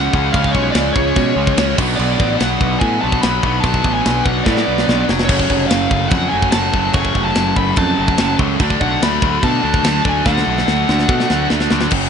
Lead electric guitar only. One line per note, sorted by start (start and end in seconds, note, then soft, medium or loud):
0.00 0.29 F#5 medium
0.33 0.52 F5 loud
0.51 0.71 C#5 medium
0.72 0.92 D5 medium
0.93 1.72 C#5 medium
1.96 2.40 D5 medium
2.37 2.77 F#5 medium
2.80 3.01 G#5 medium
3.01 3.23 A5 loud
3.21 3.64 B5 loud
3.60 3.93 A5 loud
3.94 4.23 G#5 medium
4.25 4.46 F#5 loud
4.44 5.03 D5 medium
5.25 5.65 C#5 medium
5.67 6.11 F5 loud
6.08 6.29 F#5 loud
6.30 6.51 G#5 loud
6.52 6.95 A5 loud
6.94 7.23 C#6 loud
7.24 7.54 A5 loud
7.56 7.78 B5 medium
7.77 8.35 A5 loud
8.81 9.02 F#5 loud
9.03 9.45 B5 loud
9.44 10.01 A5 medium
10.08 10.26 G#5 medium
10.26 11.46 F#5 medium